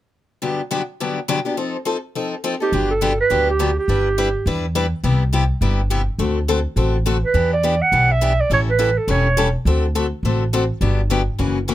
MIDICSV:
0, 0, Header, 1, 4, 480
1, 0, Start_track
1, 0, Key_signature, 1, "major"
1, 0, Tempo, 289017
1, 681, Time_signature, 4, 2, 24, 8
1, 19504, End_track
2, 0, Start_track
2, 0, Title_t, "Clarinet"
2, 0, Program_c, 0, 71
2, 4353, Note_on_c, 0, 67, 75
2, 4783, Note_off_c, 0, 67, 0
2, 4825, Note_on_c, 0, 69, 84
2, 5258, Note_off_c, 0, 69, 0
2, 5322, Note_on_c, 0, 71, 90
2, 5747, Note_off_c, 0, 71, 0
2, 5813, Note_on_c, 0, 67, 81
2, 6233, Note_off_c, 0, 67, 0
2, 6290, Note_on_c, 0, 67, 79
2, 7635, Note_off_c, 0, 67, 0
2, 12022, Note_on_c, 0, 71, 79
2, 12452, Note_off_c, 0, 71, 0
2, 12511, Note_on_c, 0, 74, 86
2, 12981, Note_on_c, 0, 78, 95
2, 13006, Note_off_c, 0, 74, 0
2, 13474, Note_on_c, 0, 76, 98
2, 13499, Note_off_c, 0, 78, 0
2, 13958, Note_on_c, 0, 74, 80
2, 13983, Note_off_c, 0, 76, 0
2, 14137, Note_off_c, 0, 74, 0
2, 14170, Note_on_c, 0, 73, 81
2, 14281, Note_off_c, 0, 73, 0
2, 14452, Note_on_c, 0, 71, 78
2, 14906, Note_on_c, 0, 69, 69
2, 14931, Note_off_c, 0, 71, 0
2, 15119, Note_on_c, 0, 73, 72
2, 15144, Note_off_c, 0, 69, 0
2, 15850, Note_off_c, 0, 73, 0
2, 19504, End_track
3, 0, Start_track
3, 0, Title_t, "Steel-string acoustic guitar"
3, 0, Program_c, 1, 25
3, 694, Note_on_c, 1, 43, 59
3, 694, Note_on_c, 1, 50, 58
3, 701, Note_on_c, 1, 54, 62
3, 704, Note_on_c, 1, 59, 56
3, 704, Note_on_c, 1, 62, 56
3, 706, Note_on_c, 1, 67, 59
3, 1000, Note_off_c, 1, 43, 0
3, 1000, Note_off_c, 1, 50, 0
3, 1003, Note_off_c, 1, 54, 0
3, 1005, Note_off_c, 1, 59, 0
3, 1005, Note_off_c, 1, 62, 0
3, 1006, Note_off_c, 1, 67, 0
3, 1173, Note_on_c, 1, 43, 74
3, 1177, Note_on_c, 1, 50, 72
3, 1181, Note_on_c, 1, 54, 78
3, 1183, Note_on_c, 1, 62, 74
3, 1184, Note_on_c, 1, 59, 88
3, 1186, Note_on_c, 1, 67, 85
3, 1339, Note_off_c, 1, 43, 0
3, 1341, Note_off_c, 1, 50, 0
3, 1343, Note_off_c, 1, 54, 0
3, 1344, Note_off_c, 1, 62, 0
3, 1345, Note_off_c, 1, 59, 0
3, 1346, Note_off_c, 1, 67, 0
3, 1667, Note_on_c, 1, 43, 58
3, 1667, Note_on_c, 1, 50, 64
3, 1671, Note_on_c, 1, 54, 57
3, 1676, Note_on_c, 1, 59, 64
3, 1677, Note_on_c, 1, 62, 68
3, 1680, Note_on_c, 1, 67, 64
3, 1967, Note_off_c, 1, 43, 0
3, 1967, Note_off_c, 1, 50, 0
3, 1969, Note_off_c, 1, 54, 0
3, 1971, Note_off_c, 1, 59, 0
3, 1972, Note_off_c, 1, 62, 0
3, 1973, Note_off_c, 1, 67, 0
3, 2129, Note_on_c, 1, 43, 82
3, 2131, Note_on_c, 1, 50, 83
3, 2136, Note_on_c, 1, 54, 80
3, 2137, Note_on_c, 1, 59, 83
3, 2143, Note_on_c, 1, 67, 98
3, 2145, Note_on_c, 1, 62, 84
3, 2298, Note_off_c, 1, 43, 0
3, 2299, Note_off_c, 1, 50, 0
3, 2301, Note_off_c, 1, 54, 0
3, 2302, Note_off_c, 1, 59, 0
3, 2305, Note_off_c, 1, 62, 0
3, 2305, Note_off_c, 1, 67, 0
3, 2408, Note_on_c, 1, 67, 44
3, 2420, Note_on_c, 1, 62, 45
3, 2427, Note_on_c, 1, 59, 43
3, 2432, Note_on_c, 1, 54, 40
3, 2599, Note_off_c, 1, 67, 0
3, 2604, Note_off_c, 1, 54, 0
3, 2605, Note_off_c, 1, 62, 0
3, 2607, Note_off_c, 1, 59, 0
3, 2611, Note_on_c, 1, 53, 61
3, 2614, Note_on_c, 1, 60, 67
3, 2618, Note_on_c, 1, 69, 60
3, 2619, Note_on_c, 1, 63, 66
3, 2919, Note_off_c, 1, 53, 0
3, 2920, Note_off_c, 1, 60, 0
3, 2922, Note_off_c, 1, 69, 0
3, 2923, Note_off_c, 1, 63, 0
3, 3078, Note_on_c, 1, 53, 82
3, 3080, Note_on_c, 1, 60, 77
3, 3091, Note_on_c, 1, 63, 89
3, 3097, Note_on_c, 1, 69, 86
3, 3252, Note_off_c, 1, 53, 0
3, 3253, Note_off_c, 1, 60, 0
3, 3259, Note_off_c, 1, 63, 0
3, 3261, Note_off_c, 1, 69, 0
3, 3577, Note_on_c, 1, 53, 55
3, 3578, Note_on_c, 1, 60, 60
3, 3587, Note_on_c, 1, 69, 67
3, 3589, Note_on_c, 1, 63, 62
3, 3882, Note_off_c, 1, 53, 0
3, 3882, Note_off_c, 1, 60, 0
3, 3887, Note_off_c, 1, 69, 0
3, 3888, Note_off_c, 1, 63, 0
3, 4048, Note_on_c, 1, 53, 74
3, 4051, Note_on_c, 1, 60, 84
3, 4056, Note_on_c, 1, 63, 91
3, 4058, Note_on_c, 1, 69, 96
3, 4217, Note_off_c, 1, 53, 0
3, 4219, Note_off_c, 1, 60, 0
3, 4221, Note_off_c, 1, 63, 0
3, 4222, Note_off_c, 1, 69, 0
3, 4322, Note_on_c, 1, 69, 46
3, 4343, Note_on_c, 1, 63, 41
3, 4350, Note_on_c, 1, 60, 40
3, 4517, Note_off_c, 1, 69, 0
3, 4527, Note_off_c, 1, 63, 0
3, 4528, Note_on_c, 1, 50, 60
3, 4531, Note_off_c, 1, 60, 0
3, 4532, Note_on_c, 1, 54, 54
3, 4539, Note_on_c, 1, 62, 66
3, 4540, Note_on_c, 1, 59, 59
3, 4548, Note_on_c, 1, 67, 60
3, 4838, Note_off_c, 1, 50, 0
3, 4840, Note_off_c, 1, 54, 0
3, 4843, Note_off_c, 1, 59, 0
3, 4843, Note_off_c, 1, 62, 0
3, 4847, Note_off_c, 1, 67, 0
3, 5001, Note_on_c, 1, 50, 77
3, 5009, Note_on_c, 1, 54, 70
3, 5012, Note_on_c, 1, 62, 88
3, 5013, Note_on_c, 1, 59, 79
3, 5015, Note_on_c, 1, 67, 90
3, 5173, Note_off_c, 1, 50, 0
3, 5178, Note_off_c, 1, 54, 0
3, 5179, Note_off_c, 1, 62, 0
3, 5180, Note_off_c, 1, 59, 0
3, 5181, Note_off_c, 1, 67, 0
3, 5479, Note_on_c, 1, 50, 61
3, 5484, Note_on_c, 1, 54, 61
3, 5487, Note_on_c, 1, 59, 58
3, 5497, Note_on_c, 1, 62, 72
3, 5500, Note_on_c, 1, 67, 64
3, 5793, Note_off_c, 1, 50, 0
3, 5796, Note_off_c, 1, 54, 0
3, 5797, Note_off_c, 1, 59, 0
3, 5802, Note_off_c, 1, 62, 0
3, 5803, Note_off_c, 1, 67, 0
3, 5967, Note_on_c, 1, 50, 72
3, 5975, Note_on_c, 1, 54, 82
3, 5977, Note_on_c, 1, 59, 87
3, 5977, Note_on_c, 1, 62, 79
3, 5985, Note_on_c, 1, 67, 87
3, 6136, Note_off_c, 1, 50, 0
3, 6140, Note_off_c, 1, 54, 0
3, 6141, Note_off_c, 1, 59, 0
3, 6142, Note_off_c, 1, 62, 0
3, 6145, Note_off_c, 1, 67, 0
3, 6457, Note_on_c, 1, 55, 52
3, 6462, Note_on_c, 1, 62, 54
3, 6464, Note_on_c, 1, 64, 63
3, 6471, Note_on_c, 1, 71, 64
3, 6762, Note_off_c, 1, 55, 0
3, 6764, Note_off_c, 1, 62, 0
3, 6765, Note_off_c, 1, 64, 0
3, 6768, Note_off_c, 1, 71, 0
3, 6939, Note_on_c, 1, 62, 76
3, 6941, Note_on_c, 1, 55, 76
3, 6947, Note_on_c, 1, 71, 92
3, 6950, Note_on_c, 1, 64, 78
3, 7102, Note_off_c, 1, 62, 0
3, 7103, Note_off_c, 1, 55, 0
3, 7106, Note_off_c, 1, 71, 0
3, 7107, Note_off_c, 1, 64, 0
3, 7420, Note_on_c, 1, 55, 62
3, 7425, Note_on_c, 1, 62, 61
3, 7427, Note_on_c, 1, 64, 65
3, 7428, Note_on_c, 1, 71, 70
3, 7723, Note_off_c, 1, 55, 0
3, 7725, Note_off_c, 1, 62, 0
3, 7726, Note_off_c, 1, 64, 0
3, 7726, Note_off_c, 1, 71, 0
3, 7891, Note_on_c, 1, 55, 80
3, 7892, Note_on_c, 1, 62, 90
3, 7899, Note_on_c, 1, 71, 94
3, 7901, Note_on_c, 1, 64, 95
3, 8058, Note_off_c, 1, 55, 0
3, 8058, Note_off_c, 1, 62, 0
3, 8062, Note_off_c, 1, 64, 0
3, 8062, Note_off_c, 1, 71, 0
3, 8363, Note_on_c, 1, 48, 58
3, 8370, Note_on_c, 1, 59, 63
3, 8372, Note_on_c, 1, 55, 64
3, 8374, Note_on_c, 1, 67, 67
3, 8376, Note_on_c, 1, 64, 65
3, 8673, Note_off_c, 1, 48, 0
3, 8677, Note_off_c, 1, 59, 0
3, 8678, Note_off_c, 1, 55, 0
3, 8679, Note_off_c, 1, 67, 0
3, 8680, Note_off_c, 1, 64, 0
3, 8845, Note_on_c, 1, 48, 72
3, 8852, Note_on_c, 1, 55, 70
3, 8855, Note_on_c, 1, 64, 81
3, 8858, Note_on_c, 1, 59, 80
3, 8863, Note_on_c, 1, 67, 83
3, 9014, Note_off_c, 1, 48, 0
3, 9017, Note_off_c, 1, 55, 0
3, 9019, Note_off_c, 1, 64, 0
3, 9020, Note_off_c, 1, 59, 0
3, 9023, Note_off_c, 1, 67, 0
3, 9325, Note_on_c, 1, 48, 52
3, 9327, Note_on_c, 1, 55, 62
3, 9332, Note_on_c, 1, 59, 62
3, 9340, Note_on_c, 1, 67, 60
3, 9341, Note_on_c, 1, 64, 60
3, 9634, Note_off_c, 1, 48, 0
3, 9635, Note_off_c, 1, 55, 0
3, 9637, Note_off_c, 1, 59, 0
3, 9641, Note_off_c, 1, 67, 0
3, 9642, Note_off_c, 1, 64, 0
3, 9803, Note_on_c, 1, 48, 74
3, 9808, Note_on_c, 1, 55, 79
3, 9812, Note_on_c, 1, 59, 80
3, 9812, Note_on_c, 1, 64, 88
3, 9817, Note_on_c, 1, 67, 99
3, 9972, Note_off_c, 1, 48, 0
3, 9974, Note_off_c, 1, 55, 0
3, 9977, Note_off_c, 1, 59, 0
3, 9977, Note_off_c, 1, 64, 0
3, 9979, Note_off_c, 1, 67, 0
3, 10281, Note_on_c, 1, 50, 58
3, 10282, Note_on_c, 1, 57, 65
3, 10289, Note_on_c, 1, 60, 56
3, 10289, Note_on_c, 1, 66, 65
3, 10296, Note_on_c, 1, 69, 67
3, 10591, Note_off_c, 1, 50, 0
3, 10591, Note_off_c, 1, 57, 0
3, 10595, Note_off_c, 1, 60, 0
3, 10595, Note_off_c, 1, 66, 0
3, 10598, Note_off_c, 1, 69, 0
3, 10767, Note_on_c, 1, 50, 73
3, 10768, Note_on_c, 1, 57, 82
3, 10775, Note_on_c, 1, 60, 79
3, 10775, Note_on_c, 1, 69, 97
3, 10781, Note_on_c, 1, 66, 79
3, 10933, Note_off_c, 1, 50, 0
3, 10934, Note_off_c, 1, 57, 0
3, 10937, Note_off_c, 1, 60, 0
3, 10937, Note_off_c, 1, 69, 0
3, 10940, Note_off_c, 1, 66, 0
3, 11234, Note_on_c, 1, 50, 50
3, 11240, Note_on_c, 1, 57, 60
3, 11243, Note_on_c, 1, 60, 61
3, 11246, Note_on_c, 1, 66, 68
3, 11250, Note_on_c, 1, 69, 62
3, 11546, Note_off_c, 1, 50, 0
3, 11549, Note_off_c, 1, 57, 0
3, 11551, Note_off_c, 1, 60, 0
3, 11552, Note_off_c, 1, 66, 0
3, 11555, Note_off_c, 1, 69, 0
3, 11719, Note_on_c, 1, 50, 80
3, 11726, Note_on_c, 1, 57, 90
3, 11731, Note_on_c, 1, 60, 88
3, 11736, Note_on_c, 1, 66, 91
3, 11737, Note_on_c, 1, 69, 86
3, 11888, Note_off_c, 1, 50, 0
3, 11892, Note_off_c, 1, 57, 0
3, 11894, Note_off_c, 1, 60, 0
3, 11897, Note_off_c, 1, 66, 0
3, 11897, Note_off_c, 1, 69, 0
3, 12190, Note_on_c, 1, 52, 59
3, 12199, Note_on_c, 1, 59, 62
3, 12203, Note_on_c, 1, 62, 62
3, 12208, Note_on_c, 1, 67, 62
3, 12504, Note_off_c, 1, 52, 0
3, 12508, Note_off_c, 1, 59, 0
3, 12510, Note_off_c, 1, 62, 0
3, 12512, Note_off_c, 1, 67, 0
3, 12677, Note_on_c, 1, 52, 68
3, 12683, Note_on_c, 1, 59, 81
3, 12690, Note_on_c, 1, 62, 78
3, 12694, Note_on_c, 1, 67, 80
3, 12847, Note_off_c, 1, 52, 0
3, 12849, Note_off_c, 1, 59, 0
3, 12853, Note_off_c, 1, 62, 0
3, 12855, Note_off_c, 1, 67, 0
3, 13158, Note_on_c, 1, 52, 56
3, 13165, Note_on_c, 1, 59, 63
3, 13167, Note_on_c, 1, 62, 61
3, 13175, Note_on_c, 1, 67, 66
3, 13467, Note_off_c, 1, 52, 0
3, 13470, Note_off_c, 1, 59, 0
3, 13472, Note_off_c, 1, 62, 0
3, 13476, Note_off_c, 1, 67, 0
3, 13639, Note_on_c, 1, 52, 83
3, 13646, Note_on_c, 1, 59, 87
3, 13656, Note_on_c, 1, 62, 84
3, 13658, Note_on_c, 1, 67, 100
3, 13807, Note_off_c, 1, 52, 0
3, 13811, Note_off_c, 1, 59, 0
3, 13815, Note_off_c, 1, 62, 0
3, 13816, Note_off_c, 1, 67, 0
3, 14126, Note_on_c, 1, 52, 57
3, 14129, Note_on_c, 1, 55, 59
3, 14135, Note_on_c, 1, 61, 65
3, 14144, Note_on_c, 1, 64, 70
3, 14146, Note_on_c, 1, 69, 58
3, 14431, Note_off_c, 1, 52, 0
3, 14432, Note_off_c, 1, 55, 0
3, 14435, Note_off_c, 1, 61, 0
3, 14440, Note_off_c, 1, 64, 0
3, 14441, Note_off_c, 1, 69, 0
3, 14591, Note_on_c, 1, 52, 73
3, 14595, Note_on_c, 1, 55, 75
3, 14597, Note_on_c, 1, 61, 76
3, 14602, Note_on_c, 1, 64, 80
3, 14609, Note_on_c, 1, 69, 89
3, 14763, Note_off_c, 1, 52, 0
3, 14765, Note_off_c, 1, 55, 0
3, 14766, Note_off_c, 1, 61, 0
3, 14768, Note_off_c, 1, 64, 0
3, 14772, Note_off_c, 1, 69, 0
3, 15079, Note_on_c, 1, 52, 65
3, 15079, Note_on_c, 1, 55, 63
3, 15085, Note_on_c, 1, 61, 72
3, 15089, Note_on_c, 1, 64, 62
3, 15095, Note_on_c, 1, 69, 68
3, 15387, Note_off_c, 1, 52, 0
3, 15387, Note_off_c, 1, 55, 0
3, 15390, Note_off_c, 1, 61, 0
3, 15392, Note_off_c, 1, 64, 0
3, 15395, Note_off_c, 1, 69, 0
3, 15562, Note_on_c, 1, 55, 94
3, 15563, Note_on_c, 1, 52, 89
3, 15566, Note_on_c, 1, 61, 88
3, 15575, Note_on_c, 1, 69, 94
3, 15577, Note_on_c, 1, 64, 92
3, 15728, Note_off_c, 1, 55, 0
3, 15729, Note_off_c, 1, 52, 0
3, 15731, Note_off_c, 1, 61, 0
3, 15735, Note_off_c, 1, 69, 0
3, 15736, Note_off_c, 1, 64, 0
3, 16049, Note_on_c, 1, 50, 58
3, 16059, Note_on_c, 1, 57, 61
3, 16062, Note_on_c, 1, 60, 66
3, 16064, Note_on_c, 1, 66, 59
3, 16064, Note_on_c, 1, 69, 73
3, 16353, Note_off_c, 1, 50, 0
3, 16358, Note_off_c, 1, 57, 0
3, 16359, Note_off_c, 1, 60, 0
3, 16360, Note_off_c, 1, 66, 0
3, 16360, Note_off_c, 1, 69, 0
3, 16527, Note_on_c, 1, 50, 72
3, 16531, Note_on_c, 1, 57, 83
3, 16531, Note_on_c, 1, 60, 83
3, 16538, Note_on_c, 1, 66, 88
3, 16538, Note_on_c, 1, 69, 88
3, 16691, Note_off_c, 1, 50, 0
3, 16693, Note_off_c, 1, 57, 0
3, 16694, Note_off_c, 1, 60, 0
3, 16697, Note_off_c, 1, 66, 0
3, 16697, Note_off_c, 1, 69, 0
3, 17020, Note_on_c, 1, 50, 62
3, 17024, Note_on_c, 1, 57, 64
3, 17028, Note_on_c, 1, 60, 63
3, 17029, Note_on_c, 1, 66, 62
3, 17034, Note_on_c, 1, 69, 61
3, 17319, Note_off_c, 1, 50, 0
3, 17321, Note_off_c, 1, 57, 0
3, 17323, Note_off_c, 1, 60, 0
3, 17323, Note_off_c, 1, 66, 0
3, 17326, Note_off_c, 1, 69, 0
3, 17488, Note_on_c, 1, 50, 80
3, 17492, Note_on_c, 1, 57, 83
3, 17497, Note_on_c, 1, 60, 91
3, 17498, Note_on_c, 1, 66, 99
3, 17500, Note_on_c, 1, 69, 95
3, 17653, Note_off_c, 1, 50, 0
3, 17655, Note_off_c, 1, 57, 0
3, 17657, Note_off_c, 1, 60, 0
3, 17658, Note_off_c, 1, 66, 0
3, 17659, Note_off_c, 1, 69, 0
3, 17953, Note_on_c, 1, 50, 63
3, 17960, Note_on_c, 1, 54, 57
3, 17966, Note_on_c, 1, 67, 61
3, 17967, Note_on_c, 1, 59, 62
3, 17967, Note_on_c, 1, 62, 64
3, 18266, Note_off_c, 1, 50, 0
3, 18270, Note_off_c, 1, 54, 0
3, 18273, Note_off_c, 1, 59, 0
3, 18273, Note_off_c, 1, 62, 0
3, 18273, Note_off_c, 1, 67, 0
3, 18434, Note_on_c, 1, 50, 80
3, 18444, Note_on_c, 1, 54, 81
3, 18450, Note_on_c, 1, 59, 80
3, 18452, Note_on_c, 1, 62, 80
3, 18453, Note_on_c, 1, 67, 81
3, 18607, Note_off_c, 1, 50, 0
3, 18612, Note_off_c, 1, 54, 0
3, 18615, Note_off_c, 1, 59, 0
3, 18615, Note_off_c, 1, 62, 0
3, 18616, Note_off_c, 1, 67, 0
3, 18908, Note_on_c, 1, 49, 57
3, 18913, Note_on_c, 1, 52, 62
3, 18917, Note_on_c, 1, 58, 60
3, 18920, Note_on_c, 1, 61, 59
3, 18926, Note_on_c, 1, 66, 70
3, 19225, Note_off_c, 1, 49, 0
3, 19227, Note_off_c, 1, 52, 0
3, 19229, Note_off_c, 1, 58, 0
3, 19231, Note_off_c, 1, 61, 0
3, 19234, Note_off_c, 1, 66, 0
3, 19395, Note_on_c, 1, 49, 73
3, 19401, Note_on_c, 1, 52, 79
3, 19408, Note_on_c, 1, 61, 89
3, 19411, Note_on_c, 1, 58, 85
3, 19412, Note_on_c, 1, 66, 85
3, 19504, Note_off_c, 1, 49, 0
3, 19504, Note_off_c, 1, 52, 0
3, 19504, Note_off_c, 1, 58, 0
3, 19504, Note_off_c, 1, 61, 0
3, 19504, Note_off_c, 1, 66, 0
3, 19504, End_track
4, 0, Start_track
4, 0, Title_t, "Upright bass"
4, 0, Program_c, 2, 32
4, 4522, Note_on_c, 2, 31, 75
4, 5290, Note_off_c, 2, 31, 0
4, 5491, Note_on_c, 2, 38, 68
4, 6255, Note_off_c, 2, 38, 0
4, 6443, Note_on_c, 2, 31, 79
4, 7210, Note_off_c, 2, 31, 0
4, 7403, Note_on_c, 2, 40, 77
4, 8169, Note_off_c, 2, 40, 0
4, 8362, Note_on_c, 2, 36, 78
4, 9128, Note_off_c, 2, 36, 0
4, 9315, Note_on_c, 2, 31, 71
4, 10083, Note_off_c, 2, 31, 0
4, 10272, Note_on_c, 2, 38, 75
4, 11041, Note_off_c, 2, 38, 0
4, 11227, Note_on_c, 2, 33, 77
4, 11996, Note_off_c, 2, 33, 0
4, 12188, Note_on_c, 2, 40, 74
4, 12957, Note_off_c, 2, 40, 0
4, 13150, Note_on_c, 2, 35, 75
4, 13918, Note_off_c, 2, 35, 0
4, 14113, Note_on_c, 2, 33, 79
4, 14880, Note_off_c, 2, 33, 0
4, 15072, Note_on_c, 2, 28, 77
4, 15840, Note_off_c, 2, 28, 0
4, 16032, Note_on_c, 2, 38, 85
4, 16800, Note_off_c, 2, 38, 0
4, 16987, Note_on_c, 2, 33, 76
4, 17758, Note_off_c, 2, 33, 0
4, 17949, Note_on_c, 2, 31, 80
4, 18720, Note_off_c, 2, 31, 0
4, 18919, Note_on_c, 2, 30, 75
4, 19504, Note_off_c, 2, 30, 0
4, 19504, End_track
0, 0, End_of_file